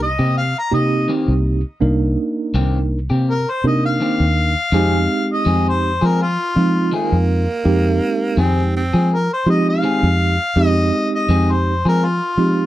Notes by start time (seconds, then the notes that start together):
Already playing: C2
0.03 D#5
0.19 C3 A#3 C4 G4
0.37 F5
0.59 A#5
0.71 C3 A#3 C4 D#4 G4 D#5
1.08 D#3 A#3 C4 G4
1.28 C2
1.80 C2 A#3 D4 D#4 A#4
2.54 C2 D#3 A#3 C4 G4
3.10 C3 A#3 C4 G4
3.30 A#4
3.50 C5
3.64 C3 A#3 D4 D#4 A#4 D#5
3.86 F5
4.00 D#3 A#3 C4 G4
4.20 D#2
4.72 F2 D#3 G#3 C4 D#4 G4 G#4
5.34 D#5
5.45 F2 D#3 G#3 C4 G#4
5.69 C5
6.01 F3 G#3 C4 G#4
6.06 A#4
6.22 F4
6.56 F3 G#3 C4 D#4 F4
6.92 D#3 G#3 A#3 C4 G#4
7.12 F2
7.65 F2 G#3 C4 D#4 G4
8.37 F2 D#3 G#3 C4 G#4
8.76 C4
8.93 F3 G#3 C4 G#4
9.14 A#4
9.33 C5
9.46 F3 G#3 C4 D#4 G4 D#5
9.70 F5
9.83 D#3 G#3 C4 G#4
10.03 F2
10.56 F2 G#3 C4 D#4 G4
10.67 D#5
11.16 D#5
11.29 F2 D#3 G#3 C4 G#4
11.52 C5
11.85 F3 G#3 C4 G#4 A#4
12.05 F4
12.37 F3 G#3 C4 D#4 G4